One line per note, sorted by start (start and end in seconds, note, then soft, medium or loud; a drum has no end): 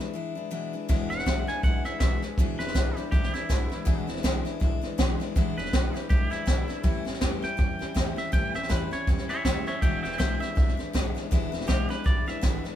0.00 0.12 E3 medium
0.00 0.14 G#3 medium
0.00 0.15 D4 medium
0.00 0.15 E4 medium
0.14 0.36 E3 medium
0.14 0.36 G#3 medium
0.14 0.35 D4 medium
0.14 0.34 E4 medium
0.35 0.50 E3 medium
0.35 0.50 G#3 soft
0.35 0.51 D4 medium
0.35 0.51 E4 medium
0.51 0.73 E2 medium
0.51 0.73 B2 medium
0.51 0.73 E3 medium
0.51 0.74 G#3 medium
0.51 0.73 D4 medium
0.51 0.72 E4 medium
0.73 0.88 E3 soft
0.73 0.88 G#3 soft
0.73 0.89 D4 medium
0.73 0.89 E4 medium
0.89 1.08 E1 loud
0.89 1.11 E2 loud
0.89 1.11 B2 loud
0.89 1.11 E3 medium
0.89 1.11 G#3 loud
0.89 1.10 D4 loud
0.89 1.09 E4 loud
0.89 kick loud
0.89 snare soft
1.10 1.24 E1 loud
1.10 1.25 E3 soft
1.10 1.26 G#3 medium
1.10 1.26 D4 medium
1.10 1.26 E4 medium
1.10 1.47 F#5 loud
1.10 snare soft
1.19 snare soft
1.26 1.45 B1 medium
1.26 1.48 E2 medium
1.26 1.48 B2 medium
1.26 1.48 E3 medium
1.26 1.48 G#3 medium
1.26 1.47 D4 medium
1.26 1.46 E4 medium
1.26 kick medium
1.26 snare medium
1.26 hi-hat pedal medium
1.47 1.62 E3 soft
1.47 1.63 G#3 soft
1.47 1.63 D4 medium
1.47 1.63 E4 medium
1.47 1.63 G#5 medium
1.47 muted upright bass stroke medium
1.47 snare soft
1.63 1.82 B1 medium
1.63 1.85 E3 medium
1.63 1.86 G#3 medium
1.63 1.85 D4 medium
1.63 1.84 E4 medium
1.63 1.85 F#5 medium
1.63 kick loud
1.63 snare soft
1.85 2.00 E3 soft
1.85 2.01 G#3 medium
1.85 2.00 D4 medium
1.85 2.01 E4 medium
1.85 1.99 E5 medium
1.85 snare soft
2.00 2.19 B1 medium
2.00 2.22 E2 medium
2.00 2.23 B2 loud
2.00 2.23 E3 medium
2.00 2.23 G#3 medium
2.00 2.22 D4 medium
2.00 2.21 E4 medium
2.00 2.22 E5 medium
2.00 kick medium
2.00 snare loud
2.00 hi-hat pedal medium
2.22 2.38 E3 soft
2.22 2.39 G#3 medium
2.22 2.39 D4 medium
2.22 2.38 E4 medium
2.22 snare soft
2.37 2.56 E1 loud
2.37 2.60 E2 medium
2.37 2.60 B2 loud
2.37 2.60 E3 medium
2.37 2.61 G#3 loud
2.37 2.60 D4 loud
2.37 2.58 E4 loud
2.37 kick loud
2.37 snare soft
2.59 2.73 E1 loud
2.59 2.74 E3 soft
2.59 2.74 G#3 medium
2.59 2.75 D4 soft
2.59 2.75 E4 medium
2.59 2.96 B4 loud
2.59 snare soft
2.67 snare soft
2.74 2.93 B1 medium
2.74 2.96 E2 medium
2.74 2.97 B2 medium
2.74 2.97 E3 medium
2.74 2.97 G#3 medium
2.74 2.97 D4 medium
2.74 2.95 E4 medium
2.74 kick medium
2.74 snare medium
2.74 hi-hat pedal medium
2.96 3.11 E3 soft
2.96 3.12 G#3 medium
2.96 3.12 D4 medium
2.96 3.12 E4 medium
2.96 3.10 G4 medium
2.96 muted upright bass stroke medium
2.96 snare soft
3.11 3.30 B1 medium
3.11 3.34 E3 medium
3.11 3.34 G#3 medium
3.11 3.33 D4 medium
3.11 3.33 E4 medium
3.11 3.33 G4 medium
3.11 kick loud
3.11 snare soft
3.23 snare soft
3.34 3.49 E3 medium
3.34 3.49 G#3 soft
3.34 3.50 D4 medium
3.34 4.06 E4 medium
3.34 3.50 E4 medium
3.34 snare soft
3.49 3.68 B1 medium
3.49 3.71 E2 medium
3.49 3.71 B2 medium
3.49 3.71 E3 medium
3.49 3.71 G#3 medium
3.49 3.70 D4 medium
3.49 3.69 E4 loud
3.49 kick medium
3.49 snare loud
3.49 hi-hat pedal medium
3.70 3.85 E3 soft
3.70 3.85 G#3 soft
3.70 3.86 D4 medium
3.70 3.86 E4 medium
3.70 muted upright bass stroke medium
3.70 snare soft
3.85 4.05 E1 loud
3.85 4.08 E2 loud
3.85 4.08 B2 loud
3.85 4.08 E3 medium
3.85 4.08 G#3 loud
3.85 4.07 D4 loud
3.85 4.06 E4 loud
3.85 kick loud
3.85 snare soft
4.07 4.22 E1 medium
4.07 4.23 E3 medium
4.07 4.23 G#3 medium
4.07 4.24 D4 medium
4.07 4.24 E4 medium
4.07 snare soft
4.16 snare soft
4.23 4.42 B1 medium
4.23 4.45 E2 medium
4.23 4.46 B2 loud
4.23 4.46 E3 medium
4.23 4.45 G#3 loud
4.23 4.44 D4 loud
4.23 4.44 E4 medium
4.23 kick medium
4.23 snare loud
4.23 hi-hat pedal medium
4.45 4.59 E3 medium
4.45 4.60 G#3 medium
4.45 4.61 D4 medium
4.45 4.61 E4 medium
4.45 muted upright bass stroke medium
4.45 snare soft
4.60 4.79 B1 medium
4.60 4.82 E3 medium
4.60 4.82 G#3 medium
4.60 4.81 D4 medium
4.60 4.80 E4 medium
4.60 kick loud
4.60 snare soft
4.82 4.97 E3 soft
4.82 4.98 G#3 medium
4.82 4.98 D4 medium
4.82 4.98 E4 medium
4.82 muted upright bass stroke medium
4.82 snare soft
4.98 5.17 B1 medium
4.98 5.20 E2 medium
4.98 5.20 B2 medium
4.98 5.20 E3 medium
4.98 5.20 G#3 loud
4.98 5.20 D4 loud
4.98 5.19 E4 loud
4.98 kick medium
4.98 snare loud
4.98 hi-hat pedal medium
5.20 5.35 E3 medium
5.20 5.36 G#3 medium
5.20 5.36 D4 medium
5.20 5.36 E4 medium
5.20 snare soft
5.36 5.54 E1 loud
5.36 5.57 E2 loud
5.36 5.58 B2 medium
5.36 5.58 E3 loud
5.36 5.58 G#3 loud
5.36 5.57 D4 loud
5.36 5.56 E4 loud
5.36 kick loud
5.36 snare soft
5.57 5.71 E1 loud
5.57 5.72 E3 soft
5.57 5.73 G#3 medium
5.57 5.73 D4 medium
5.57 5.73 E4 soft
5.57 5.95 B4 medium
5.57 snare soft
5.66 snare soft
5.73 5.91 B1 medium
5.73 5.95 E2 medium
5.73 5.95 B2 medium
5.73 5.95 E3 medium
5.73 5.95 G#3 medium
5.73 5.94 D4 medium
5.73 5.93 E4 loud
5.73 kick medium
5.73 snare loud
5.73 hi-hat pedal medium
5.94 6.08 E3 soft
5.94 6.09 G#3 medium
5.94 6.10 D4 soft
5.94 6.10 E4 medium
5.94 6.08 G4 medium
5.94 snare soft
6.09 6.28 B1 loud
6.09 6.31 E3 medium
6.09 6.30 G#3 medium
6.09 6.30 D4 medium
6.09 6.29 E4 medium
6.09 6.31 G4 loud
6.09 kick loud
6.09 snare soft
6.30 6.45 E3 soft
6.30 6.46 G#3 medium
6.30 6.46 D4 medium
6.30 6.46 E4 medium
6.30 7.03 E4 medium
6.30 muted upright bass stroke medium
6.30 snare soft
6.46 6.65 B1 medium
6.46 6.68 E2 medium
6.46 6.68 B2 medium
6.46 6.69 E3 medium
6.46 6.69 G#3 medium
6.46 6.68 D4 medium
6.46 6.67 E4 medium
6.46 kick medium
6.46 snare loud
6.46 hi-hat pedal medium
6.68 6.83 E3 soft
6.68 6.84 G#3 soft
6.68 6.84 D4 soft
6.68 6.84 E4 medium
6.68 snare soft
6.83 7.03 A1 loud
6.83 7.06 A2 loud
6.83 7.06 E3 medium
6.83 7.06 G3 medium
6.83 7.05 C#4 loud
6.83 7.04 E4 loud
6.83 kick loud
6.83 snare soft
7.05 7.19 A1 medium
7.05 7.20 G3 soft
7.05 7.21 C#4 soft
7.05 7.21 E4 medium
7.05 snare soft
7.14 snare soft
7.21 7.40 E2 medium
7.21 7.43 A2 medium
7.21 7.43 E3 loud
7.21 7.43 G3 loud
7.21 7.43 C#4 medium
7.21 7.41 E4 loud
7.21 kick medium
7.21 snare loud
7.21 hi-hat pedal medium
7.42 7.57 G3 soft
7.42 7.58 C#4 medium
7.42 7.58 E4 medium
7.42 8.16 G5 loud
7.42 muted upright bass stroke medium
7.42 snare soft
7.57 7.77 E2 medium
7.57 7.80 E3 medium
7.57 7.80 G3 medium
7.57 7.79 C#4 medium
7.57 7.78 E4 medium
7.57 kick loud
7.57 snare soft
7.79 7.94 G3 soft
7.79 7.95 C#4 medium
7.79 7.95 E4 medium
7.79 muted upright bass stroke medium
7.79 snare soft
7.94 8.14 E2 medium
7.94 8.17 A2 loud
7.94 8.17 E3 medium
7.94 8.17 G3 medium
7.94 8.17 C#4 medium
7.94 8.15 E4 loud
7.94 kick medium
7.94 snare loud
7.94 hi-hat pedal medium
8.16 8.32 G3 soft
8.16 8.32 C#4 soft
8.16 8.33 E4 soft
8.16 8.33 E5 medium
8.16 muted upright bass stroke medium
8.16 snare soft
8.32 8.51 A1 loud
8.32 8.54 A2 medium
8.32 8.55 E3 medium
8.32 8.55 G3 medium
8.32 8.55 C#4 medium
8.32 8.53 E4 loud
8.32 8.54 G5 loud
8.32 kick loud
8.32 snare soft
8.54 8.68 A1 medium
8.54 8.69 G3 soft
8.54 8.69 C#4 soft
8.54 8.69 E4 medium
8.54 8.70 E5 loud
8.54 snare soft
8.63 snare soft
8.69 8.88 E2 medium
8.69 8.91 A2 medium
8.69 8.92 E3 medium
8.69 8.92 G3 medium
8.69 8.92 C#4 medium
8.69 8.90 E4 medium
8.69 8.92 B4 medium
8.69 kick medium
8.69 snare loud
8.69 hi-hat pedal medium
8.91 9.07 G3 soft
8.91 9.08 C#4 medium
8.91 9.07 E4 medium
8.91 9.08 C#5 medium
8.91 muted upright bass stroke medium
8.91 snare soft
9.07 9.26 E2 medium
9.07 9.29 E3 medium
9.07 9.30 G3 medium
9.07 9.29 C#4 medium
9.07 9.28 E4 medium
9.07 kick loud
9.07 snare soft
9.18 snare soft
9.29 9.45 G3 medium
9.29 9.46 C#4 medium
9.29 9.45 E4 medium
9.29 9.44 C#5 medium
9.29 9.44 E5 medium
9.29 muted upright bass stroke medium
9.29 snare soft
9.45 9.63 D#2 medium
9.45 9.67 A2 medium
9.45 9.67 E3 medium
9.45 9.67 G3 medium
9.45 9.67 C#4 medium
9.45 9.65 E4 medium
9.45 9.65 C#5 medium
9.45 9.66 E5 medium
9.45 kick medium
9.45 snare loud
9.45 hi-hat pedal medium
9.66 9.83 G3 soft
9.66 9.83 C#4 soft
9.66 9.82 E4 medium
9.66 9.81 C#5 medium
9.66 9.80 E5 loud
9.66 snare soft
9.81 10.00 E1 loud
9.81 10.04 E2 medium
9.81 10.04 B2 medium
9.81 10.04 E3 medium
9.81 10.04 G#3 medium
9.81 10.04 D4 medium
9.81 10.02 E4 medium
9.81 10.01 E5 medium
9.81 10.02 G5 loud
9.81 kick loud
9.81 snare soft
10.02 10.17 E1 loud
10.02 10.18 E3 soft
10.02 10.19 G#3 medium
10.02 10.18 D4 medium
10.02 10.19 E4 medium
10.02 10.17 E5 medium
10.02 10.18 G5 medium
10.02 snare soft
10.12 snare soft
10.18 10.38 B1 medium
10.18 10.41 E2 medium
10.18 10.41 B2 medium
10.18 10.41 E3 medium
10.18 10.41 G#3 medium
10.18 10.40 D4 medium
10.18 10.39 E4 medium
10.18 10.39 E5 medium
10.18 10.41 G5 medium
10.18 kick medium
10.18 snare loud
10.18 hi-hat pedal medium
10.40 10.54 E3 medium
10.40 10.55 G#3 soft
10.40 10.56 D4 medium
10.40 10.56 E4 medium
10.40 11.49 E5 medium
10.40 muted upright bass stroke medium
10.40 snare soft
10.55 10.75 B1 medium
10.55 10.78 E3 medium
10.55 10.78 G#3 medium
10.55 10.77 D4 medium
10.55 10.76 E4 medium
10.55 kick loud
10.55 snare soft
10.68 snare soft
10.77 10.93 E3 soft
10.77 10.93 G#3 medium
10.77 10.94 D4 medium
10.77 10.93 E4 medium
10.77 muted upright bass stroke medium
10.77 snare soft
10.93 11.12 B1 loud
10.93 11.15 E2 medium
10.93 11.15 B2 medium
10.93 11.16 E3 medium
10.93 11.15 G#3 loud
10.93 11.15 D4 medium
10.93 11.13 E4 loud
10.93 kick medium
10.93 snare loud
10.93 hi-hat pedal medium
11.15 11.31 E3 medium
11.15 11.31 G#3 medium
11.15 11.31 D4 medium
11.15 11.31 E4 medium
11.15 snare soft
11.31 11.50 E1 loud
11.31 11.53 E2 loud
11.31 11.53 B2 loud
11.31 11.53 E3 medium
11.31 11.53 G#3 loud
11.31 11.52 D4 loud
11.31 11.51 E4 loud
11.31 kick loud
11.31 snare soft
11.52 11.67 E1 loud
11.52 11.67 E3 medium
11.52 11.67 G#3 medium
11.52 11.67 D4 medium
11.52 11.68 E4 medium
11.52 snare soft
11.61 snare soft
11.67 11.87 B1 medium
11.67 11.89 E2 medium
11.67 11.90 B2 medium
11.67 11.90 E3 medium
11.67 11.89 G#3 medium
11.67 11.89 D4 medium
11.67 11.87 E4 medium
11.67 11.89 G4 loud
11.67 kick medium
11.67 snare medium
11.67 hi-hat pedal medium
11.89 12.03 E3 soft
11.89 12.04 G#3 soft
11.89 12.05 D4 medium
11.89 12.05 E4 medium
11.89 12.05 B4 medium
11.89 snare soft
12.04 12.24 B1 loud
12.04 12.27 E3 medium
12.04 12.27 G#3 medium
12.04 12.26 D4 medium
12.04 12.25 E4 medium
12.04 12.28 D5 loud
12.04 kick loud
12.04 snare soft
12.26 12.41 E3 soft
12.26 12.41 G#3 medium
12.26 12.42 D4 medium
12.26 12.42 E4 medium
12.26 12.76 E5 loud
12.26 snare soft
12.41 12.61 A1 medium
12.41 12.64 E2 medium
12.41 12.64 B2 medium
12.41 12.64 E3 medium
12.41 12.64 G#3 medium
12.41 12.64 D4 medium
12.41 12.63 E4 loud
12.41 kick medium
12.41 snare loud
12.41 hi-hat pedal medium
12.64 12.76 E3 soft
12.64 12.76 G#3 medium
12.64 12.76 D4 medium
12.64 12.76 E4 medium
12.64 muted upright bass stroke medium
12.64 snare soft